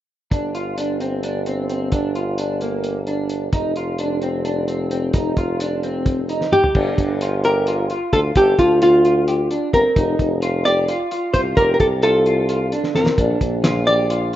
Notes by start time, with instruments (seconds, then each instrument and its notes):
0.31 tuba G1, clean electric guitar D4, kick, closed hi-hat
0.55 clean electric guitar F4, closed hi-hat
0.78 clean electric guitar D4, closed hi-hat
1.00 clean electric guitar C4, closed hi-hat
1.23 clean electric guitar D4, closed hi-hat
1.46 clean electric guitar C4, closed hi-hat
1.70 clean electric guitar C4, closed hi-hat
1.92 clean electric guitar D4, kick, closed hi-hat
2.15 clean electric guitar F4, closed hi-hat
2.38 clean electric guitar D4, closed hi-hat
2.61 clean electric guitar A#3, closed hi-hat
2.84 closed hi-hat
3.07 clean electric guitar D4, closed hi-hat
3.29 closed hi-hat
3.53 tuba F1, clean electric guitar D#4, kick, closed hi-hat
3.76 clean electric guitar F4, closed hi-hat
3.98 clean electric guitar D4, closed hi-hat
4.22 clean electric guitar C4, closed hi-hat
4.45 clean electric guitar D4, closed hi-hat
4.68 clean electric guitar C4, closed hi-hat
4.91 clean electric guitar C4, closed hi-hat
5.13 clean electric guitar D#4, kick, closed hi-hat
5.37 clean electric guitar F4, kick, closed hi-hat
5.60 clean electric guitar D4, closed hi-hat
5.83 clean electric guitar C4, closed hi-hat
6.06 kick, closed hi-hat
6.29 clean electric guitar D#4, closed hi-hat
6.41 snare
6.52 hollow-body jazz guitar G4, mid tom
6.64 floor tom
6.75 tuba G1, clean electric guitar D4, kick, crash
6.98 tuba G1, kick, closed hi-hat
7.21 clean electric guitar F4, closed hi-hat
7.44 clean electric guitar G4, hollow-body jazz guitar A#4, closed hi-hat
7.67 clean electric guitar F4, closed hi-hat
7.90 clean electric guitar F4, closed hi-hat
8.13 tuba D2, clean electric guitar F4, hollow-body jazz guitar A4, kick, closed hi-hat
8.35 tuba G1, hollow-body jazz guitar G4, clean electric guitar A4, kick, closed hi-hat
8.59 tuba D2, hollow-body jazz guitar F4, kick, closed hi-hat
8.82 clean electric guitar F4, hollow-body jazz guitar F4, closed hi-hat
9.05 clean electric guitar F4, closed hi-hat
9.28 clean electric guitar G4, closed hi-hat
9.51 clean electric guitar D4, closed hi-hat
9.73 tuba G1, clean electric guitar C4, hollow-body jazz guitar A#4, kick, closed hi-hat
9.96 tuba F1, clean electric guitar D#4, kick, closed hi-hat
10.19 tuba F1, kick, closed hi-hat
10.42 clean electric guitar F4, closed hi-hat
10.65 clean electric guitar G4, hollow-body jazz guitar D5, closed hi-hat
10.88 clean electric guitar F4, closed hi-hat
11.11 clean electric guitar F4, closed hi-hat
11.34 tuba C2, clean electric guitar F4, hollow-body jazz guitar C5, kick, closed hi-hat
11.57 tuba F1, clean electric guitar G4, hollow-body jazz guitar A#4, kick, closed hi-hat
11.74 hollow-body jazz guitar A#4
11.80 tuba C2, hollow-body jazz guitar A4, kick, closed hi-hat
12.03 clean electric guitar F4, hollow-body jazz guitar A4, closed hi-hat
12.26 clean electric guitar F4, closed hi-hat
12.49 clean electric guitar F4, closed hi-hat
12.72 clean electric guitar D4, closed hi-hat
12.84 snare
12.95 tuba F2, clean electric guitar C4, hollow-body jazz guitar A#4, snare
13.06 snare
13.18 tuba A#1, clean electric guitar D4, kick, closed hi-hat
13.41 tuba A#1, kick, closed hi-hat
13.64 clean electric guitar F4, snare, closed hi-hat
13.87 clean electric guitar G4, hollow-body jazz guitar D5, closed hi-hat
14.10 clean electric guitar F4, closed hi-hat